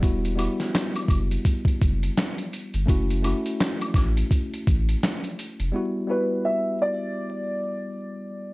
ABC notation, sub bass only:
X:1
M:4/4
L:1/16
Q:"Swing 16ths" 1/4=84
K:Edor
V:1 name="Sub bass" clef=bass
E,,,3 z3 F,,,2 z2 F,,,2 z3 G,,, | F,,,3 z3 A,,,2 z2 A,,,2 z3 =F,,, | z16 |]